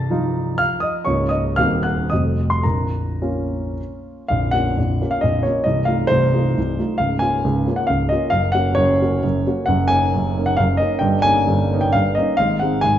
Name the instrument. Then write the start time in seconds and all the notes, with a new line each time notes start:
grand piano
Already playing: C1 C2 A5 A6
0.10 F3 D#4 F4
0.58 F5 F6
0.80 D#5 D#6
1.05 C#1 C#2 A#3 C#4 F4 C#5 C#6
1.29 D#5 D#6
1.56 D#1 D#2 A#3 C4 F#4 F5 F6
1.83 F#5 F#6
2.10 F1 F2 A3 C4 F#4 D#5 D#6
2.50 C6
2.63 A#0 A#1 A#4 A#5
3.22 A#3 C#4 F4
4.28 A#0 A#1 F5
4.51 A#3 C#4 F4 F#5
4.78 A#0 A#1
5.01 A#3 C#4 F4
5.11 F5
5.21 A#0 A#1 D#5
5.43 A#3 C#4 F4 C#5
5.64 C1 C2 D#5
5.85 A3 D#4 F4 F5
6.07 C1 C2 C5
6.33 A3 D#4 F4
6.57 C1 C2
6.79 A3 D#4 F4
6.98 C#1 C#2 F5
7.19 A#3 C#4 F4 G#5
7.44 C#1 C#2
7.67 A#3 C#4 F4
7.76 F#5
7.87 C#1 C#2 F5
8.09 A#3 C#4 F4 D#5
8.30 F#1 F#2 F5
8.52 A#3 C#4 F#4 F#5
8.75 F#1 F#2 C#5
9.01 A#3 C#4 F#4
9.23 F#1 F#2
9.47 A#3 C#4 F#4
9.66 F#1 F#2 F#5
9.88 A#3 C#4 D#4 G#5
10.14 F#1 F#2
10.37 A#3 C#4 D#4
10.46 F#5
10.57 F#1 F#2 F5
10.77 A#3 C#4 D#4 D#5
10.99 G1 G2 G5
11.22 A#3 C#4 D#4 G#5
11.47 G1 G2
11.72 A#3 C#4 D#4
11.81 G5
11.93 G1 G2 F5
12.15 A#3 C#4 D#4 D#5
12.37 G#1 G#2 F5
12.59 G#3 C4 D#4 F#5
12.81 G#1 G#2 G#5